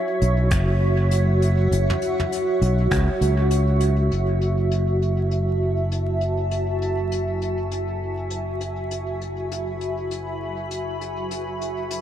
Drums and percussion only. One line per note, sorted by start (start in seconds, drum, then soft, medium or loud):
0.22 closed hi-hat soft
0.51 finger snap medium
0.51 kick loud
0.51 closed hi-hat medium
1.11 closed hi-hat medium
1.42 closed hi-hat soft
1.72 closed hi-hat medium
1.90 mid tom medium
2.02 closed hi-hat soft
2.20 mid tom medium
2.32 closed hi-hat medium
2.62 closed hi-hat soft
2.91 finger snap medium
2.91 kick loud
2.91 closed hi-hat medium
3.21 closed hi-hat medium
3.51 closed hi-hat medium
3.80 closed hi-hat soft
4.12 closed hi-hat medium
4.41 closed hi-hat soft
4.71 closed hi-hat medium
5.02 closed hi-hat soft
5.31 closed hi-hat medium
5.92 closed hi-hat medium
6.21 closed hi-hat soft
6.51 closed hi-hat medium
6.82 closed hi-hat soft
7.12 closed hi-hat medium
7.42 closed hi-hat soft
7.71 closed hi-hat medium
8.30 closed hi-hat medium
8.61 closed hi-hat soft
8.91 closed hi-hat medium
9.21 closed hi-hat soft
9.52 closed hi-hat medium
9.81 closed hi-hat soft
10.11 closed hi-hat medium
10.71 closed hi-hat medium
11.01 closed hi-hat soft
11.31 closed hi-hat medium
11.61 closed hi-hat soft
11.91 closed hi-hat medium